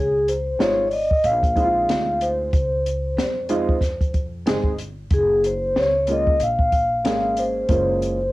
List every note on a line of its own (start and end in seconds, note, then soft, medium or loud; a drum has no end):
0.00 0.59 C#2 medium
0.00 0.12 G#4 soft
0.00 0.29 G#4 medium
0.00 0.12 C#5 medium
0.28 0.61 C5 medium
0.28 closed hi-hat medium
0.59 1.21 G#1 medium
0.59 0.83 G#3 medium
0.59 0.83 C4 medium
0.59 0.84 D#4 medium
0.59 0.84 F4 medium
0.59 0.87 C#5 medium
0.59 snare loud
0.59 closed hi-hat medium
0.87 0.92 D5 medium
0.87 open hi-hat soft
0.93 1.26 D#5 medium
1.11 kick medium
1.24 1.85 A#1 medium
1.24 2.24 F5 medium
1.24 closed hi-hat medium
1.43 kick medium
1.43 closed hi-hat medium
1.55 2.47 G#3 medium
1.55 2.47 C4 medium
1.55 2.47 D#4 medium
1.55 1.64 E4 medium
1.55 kick medium
1.55 closed hi-hat medium
1.63 2.51 F4 medium
1.89 2.50 D2 medium
1.89 snare loud
1.89 closed hi-hat medium
2.21 4.11 C5 medium
2.21 closed hi-hat medium
2.53 3.14 C#2 medium
2.53 kick loud
2.53 closed hi-hat medium
2.86 closed hi-hat medium
3.17 3.79 F2 medium
3.17 snare loud
3.17 closed hi-hat medium
3.49 3.74 G#3 medium
3.49 3.74 C4 medium
3.49 3.74 D#4 medium
3.49 3.74 F4 medium
3.49 closed hi-hat medium
3.69 kick medium
3.81 4.48 F2 medium
3.81 kick medium
3.81 snare soft
3.81 closed hi-hat medium
4.01 kick medium
4.01 closed hi-hat medium
4.14 kick medium
4.14 closed hi-hat medium
4.46 5.08 G1 medium
4.46 4.70 G#3 medium
4.46 4.71 C4 medium
4.46 4.71 D#4 medium
4.46 4.71 G#4 medium
4.46 snare loud
4.46 closed hi-hat medium
4.64 kick medium
4.79 closed hi-hat medium
5.11 5.72 F#1 medium
5.11 5.46 G#4 medium
5.11 kick loud
5.11 closed hi-hat medium
5.44 5.78 C5 medium
5.44 closed hi-hat medium
5.75 6.37 C#2 medium
5.75 6.10 C#5 loud
5.75 snare medium
5.75 closed hi-hat medium
6.07 6.32 G#3 medium
6.07 6.32 A#3 medium
6.07 6.32 C#4 medium
6.07 6.32 F4 medium
6.07 closed hi-hat medium
6.11 6.40 D#5 medium
6.27 kick medium
6.40 7.04 A#1 medium
6.40 7.41 F5 medium
6.40 closed hi-hat medium
6.59 kick medium
6.72 kick medium
6.72 closed hi-hat medium
7.04 7.66 G#1 medium
7.04 7.67 G#3 medium
7.04 7.67 A#3 medium
7.04 7.68 C#4 medium
7.04 7.96 G#4 medium
7.04 snare loud
7.04 closed hi-hat medium
7.37 8.32 C5 medium
7.37 closed hi-hat medium
7.69 8.30 F#1 medium
7.69 8.16 G#3 medium
7.69 8.16 A#3 medium
7.69 8.16 C#4 medium
7.69 8.17 F4 medium
7.69 kick loud
7.69 closed hi-hat medium
8.02 closed hi-hat medium